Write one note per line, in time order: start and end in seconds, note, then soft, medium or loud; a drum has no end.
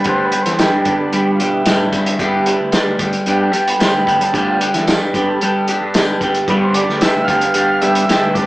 0.04 0.31 D2 medium
0.04 0.87 G2 medium
0.04 0.60 D3 medium
0.04 0.34 G3 medium
0.04 0.33 B3 loud
0.04 0.32 D4 loud
0.04 0.31 G4 medium
0.04 kick loud
0.04 closed hi-hat medium
0.09 0.26 C5 loud
0.25 0.43 B4 medium
0.32 0.58 G3 medium
0.32 0.59 B3 medium
0.32 0.60 D4 medium
0.32 0.60 G4 medium
0.32 closed hi-hat medium
0.42 0.59 C5 medium
0.42 closed hi-hat medium
0.46 0.72 E3 medium
0.46 snare soft
0.59 0.86 G3 medium
0.59 0.86 B3 medium
0.59 0.86 D4 medium
0.59 0.85 G4 medium
0.59 0.69 B4 medium
0.59 snare loud
0.59 closed hi-hat medium
0.59 tambourine loud
0.73 0.98 G2 medium
0.79 0.95 G4 medium
0.85 1.66 G2 medium
0.85 1.63 D3 medium
0.85 1.41 D3 medium
0.85 1.63 G3 soft
0.85 1.12 G3 medium
0.85 1.63 B3 medium
0.85 1.13 B3 medium
0.85 1.13 D4 medium
0.85 1.14 G4 medium
0.85 kick medium
0.85 closed hi-hat medium
0.99 1.06 A4 medium
1.13 1.42 G3 medium
1.13 1.39 G3 medium
1.13 1.41 B3 medium
1.13 1.40 D4 medium
1.13 1.39 G4 medium
1.13 1.31 G4 medium
1.13 closed hi-hat medium
1.35 1.52 F4 medium
1.40 1.65 B2 medium
1.40 1.66 G3 medium
1.40 1.67 B3 medium
1.40 1.67 D4 medium
1.40 1.68 G4 medium
1.40 closed hi-hat medium
1.53 2.81 E4 medium
1.66 2.19 G2 medium
1.66 1.92 A2 medium
1.66 2.19 D3 medium
1.66 1.95 G3 medium
1.66 1.94 B3 medium
1.66 1.93 D4 medium
1.66 1.93 G4 medium
1.66 snare loud
1.66 closed hi-hat medium
1.66 tambourine medium
1.93 2.18 G2 medium
1.93 2.20 G3 medium
1.93 2.21 B3 medium
1.93 2.21 D4 medium
1.93 2.22 G4 medium
1.93 kick medium
1.93 closed hi-hat medium
2.06 closed hi-hat medium
2.19 2.57 G2 medium
2.19 3.01 G2 medium
2.19 2.55 D3 medium
2.19 2.74 D3 medium
2.19 2.56 G3 soft
2.19 2.49 G3 medium
2.19 2.56 B3 medium
2.19 2.48 B3 medium
2.19 2.48 D4 loud
2.19 2.47 G4 loud
2.19 kick medium
2.19 closed hi-hat medium
2.46 2.74 G3 soft
2.46 2.75 B3 medium
2.46 2.75 D4 medium
2.46 2.76 G4 medium
2.46 closed hi-hat medium
2.61 2.73 D2 medium
2.72 3.00 G3 medium
2.72 3.00 B3 medium
2.72 2.99 D4 medium
2.72 2.99 G4 medium
2.72 snare loud
2.72 closed hi-hat medium
2.72 tambourine loud
2.86 3.12 D2 medium
2.99 3.79 G2 medium
2.99 3.54 D3 medium
2.99 3.27 G3 medium
2.99 3.28 B3 medium
2.99 3.28 D4 medium
2.99 3.29 G4 medium
2.99 kick medium
2.99 closed hi-hat medium
3.13 closed hi-hat medium
3.26 3.52 G2 medium
3.26 3.51 D3 soft
3.26 3.51 G3 soft
3.26 3.55 G3 medium
3.26 3.51 B3 soft
3.26 3.55 B3 medium
3.26 3.55 D4 medium
3.26 3.54 G4 medium
3.26 closed hi-hat medium
3.30 3.43 G4 medium
3.44 3.55 A4 medium
3.53 3.79 G3 medium
3.53 3.80 G3 medium
3.53 3.80 B3 medium
3.53 3.80 D4 medium
3.53 3.81 G4 medium
3.53 closed hi-hat medium
3.67 3.82 B4 medium
3.67 closed hi-hat medium
3.79 4.34 G2 medium
3.79 4.34 D3 medium
3.79 4.08 G3 medium
3.79 4.08 B3 medium
3.79 4.08 D4 medium
3.79 4.06 G4 medium
3.79 snare loud
3.79 closed hi-hat medium
3.79 tambourine medium
3.84 3.95 C5 medium
3.94 4.19 D2 medium
3.94 4.23 B4 medium
4.07 4.35 G3 medium
4.07 4.35 B3 medium
4.07 4.35 D4 medium
4.07 4.36 G4 medium
4.07 kick medium
4.07 closed hi-hat medium
4.20 4.33 G3 medium
4.20 4.34 A4 loud
4.20 closed hi-hat medium
4.32 4.59 D2 medium
4.32 5.17 G2 medium
4.32 4.69 D3 medium
4.32 4.88 D3 medium
4.32 4.69 G3 soft
4.32 4.63 G3 medium
4.32 4.70 B3 medium
4.32 4.62 B3 loud
4.32 4.62 D4 loud
4.32 4.49 G4 medium
4.32 kick medium
4.32 closed hi-hat medium
4.36 4.61 G4 loud
4.46 4.59 F4 medium
4.61 4.88 G3 medium
4.61 4.88 B3 medium
4.61 4.90 D4 medium
4.61 4.90 G4 medium
4.61 closed hi-hat medium
4.74 4.99 E3 medium
4.74 4.88 E4 medium
4.74 snare soft
4.74 closed hi-hat medium
4.87 5.16 G3 medium
4.87 5.16 B3 medium
4.87 5.16 D4 medium
4.87 5.00 F4 medium
4.87 5.15 G4 medium
4.87 snare loud
4.87 closed hi-hat medium
4.87 tambourine loud
5.02 5.26 G2 medium
5.02 5.29 G4 medium
5.14 5.96 G2 medium
5.14 5.39 D3 soft
5.14 5.69 D3 medium
5.14 5.39 G3 soft
5.14 5.41 G3 medium
5.14 5.39 B3 soft
5.14 5.42 B3 medium
5.14 5.43 D4 medium
5.14 5.43 G4 medium
5.14 kick medium
5.14 closed hi-hat medium
5.28 6.04 A4 medium
5.41 5.70 G3 medium
5.41 5.79 G3 medium
5.41 5.70 B3 medium
5.41 5.69 D4 medium
5.41 5.69 G4 medium
5.41 closed hi-hat medium
5.68 5.96 G3 medium
5.68 5.96 B3 medium
5.68 5.97 D4 medium
5.68 5.97 G4 medium
5.68 closed hi-hat medium
5.82 6.07 G2 loud
5.94 6.48 G2 medium
5.94 6.48 D3 medium
5.94 6.25 G3 medium
5.94 6.24 B3 loud
5.94 6.23 D4 medium
5.94 6.23 G4 loud
5.94 snare loud
5.94 closed hi-hat medium
5.94 tambourine medium
6.21 6.34 G2 medium
6.21 6.50 B3 medium
6.21 6.50 D4 medium
6.21 6.50 G4 medium
6.21 kick medium
6.21 closed hi-hat medium
6.25 6.49 G3 medium
6.34 closed hi-hat medium
6.48 6.86 G2 loud
6.48 7.31 G2 medium
6.48 6.84 D3 medium
6.48 7.02 D3 medium
6.48 6.84 G3 medium
6.48 6.78 G3 loud
6.48 6.85 B3 medium
6.48 6.77 B3 medium
6.48 6.77 D4 loud
6.48 6.76 G4 loud
6.48 6.55 B4 loud
6.48 kick medium
6.48 closed hi-hat medium
6.64 6.75 C5 medium
6.74 7.02 B3 medium
6.74 7.03 D4 medium
6.74 7.04 G4 medium
6.74 7.02 D5 medium
6.74 closed hi-hat medium
6.79 7.02 G3 medium
6.89 7.01 D2 medium
6.89 snare soft
7.01 7.30 G3 medium
7.01 7.30 B3 medium
7.01 7.29 D4 medium
7.01 7.29 G4 medium
7.01 7.26 E5 medium
7.01 snare loud
7.01 closed hi-hat medium
7.01 tambourine medium
7.16 7.40 D2 medium
7.24 7.81 F5 loud
7.24 kick medium
7.28 8.08 G2 medium
7.28 7.83 D3 medium
7.28 7.55 G3 medium
7.28 7.56 B3 medium
7.28 7.57 D4 medium
7.28 7.57 G4 medium
7.28 closed hi-hat medium
7.41 closed hi-hat medium
7.54 7.80 G2 loud
7.54 7.84 G3 medium
7.54 7.83 B3 medium
7.54 7.83 D4 medium
7.54 7.82 G4 medium
7.54 closed hi-hat medium
7.81 8.05 D3 soft
7.81 8.06 G3 soft
7.81 8.07 G3 medium
7.81 8.09 G3 medium
7.81 8.06 B3 medium
7.81 8.09 B3 medium
7.81 8.10 D4 medium
7.81 8.10 G4 medium
7.81 8.37 E5 loud
7.81 closed hi-hat medium
7.95 closed hi-hat medium
8.08 8.46 G2 medium
8.08 8.46 D3 medium
8.08 8.38 G3 loud
8.08 8.38 B3 medium
8.08 8.37 D4 medium
8.08 8.36 G4 loud
8.08 snare loud
8.08 closed hi-hat medium
8.08 tambourine medium
8.23 8.46 D2 medium
8.34 8.46 B3 medium
8.34 8.46 D4 medium
8.34 8.46 G4 medium
8.34 8.46 D5 medium
8.34 kick medium
8.34 closed hi-hat medium
8.39 8.46 G3 medium